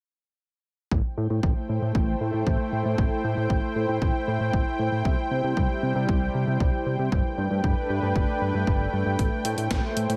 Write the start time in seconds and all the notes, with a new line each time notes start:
0.91 A1 A3 E4 C5 G5, kick
1.17 A2
1.30 A2
1.43 A1, kick
1.69 A2
1.82 A2
1.95 A1, kick
2.21 A2
2.34 A2
2.47 A1, kick
2.73 A2
2.85 A2
2.98 A1, kick
3.24 A2
3.37 A2
3.50 A1, kick
3.76 A2
3.89 A2
4.02 A1, kick
4.28 A2
4.41 A2
4.53 A1, kick
4.79 A2
4.92 A2
5.05 C2 G3, kick
5.31 C3
5.44 C3
5.57 C2, kick
5.83 C3
5.96 C3
6.09 C2, kick
6.35 C3
6.47 C3
6.60 C2, kick
6.86 C3
6.99 C3
7.12 G1 A3 D4 B4 G5, kick
7.38 G2
7.51 G2
7.64 G1, kick
7.90 G2
8.03 G2
8.16 G1, kick
8.41 G2
8.55 G2
8.67 G1, kick
8.93 G2
9.06 G2
9.19 A1 E4 C5, kick, closed hi-hat
9.45 A2, closed hi-hat
9.58 A2, closed hi-hat
9.71 A1, kick, snare, closed hi-hat
9.97 A2, closed hi-hat
10.10 A2, closed hi-hat